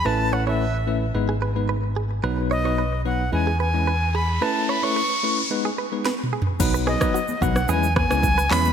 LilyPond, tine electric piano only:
\new Staff \with { instrumentName = "Tine electric piano" } { \time 4/4 \key b \mixolydian \tempo 4 = 110 <a cis' e' b'>8. <a cis' e' b'>16 r8 <a cis' e' b'>16 r16 <gis b dis' b'>16 r8 <gis b dis' b'>16 r4 | <fis b dis' b'>8. <fis b dis' b'>16 r8 <fis b dis' b'>16 r16 <gis cis' e' b'>16 r8 <gis cis' e' b'>16 r4 | <a cis' e' b'>8. <a cis' e' b'>16 r8 <a cis' e' b'>16 r16 <gis b dis' b'>16 r8 <gis b dis' b'>16 r4 | <fis b dis' b'>8. <fis b dis' b'>16 r8 <fis b dis' b'>16 r16 <gis cis' e' b'>16 r8 <gis cis' e' b'>16 r8 <gis cis' e' b'>16 r16 | }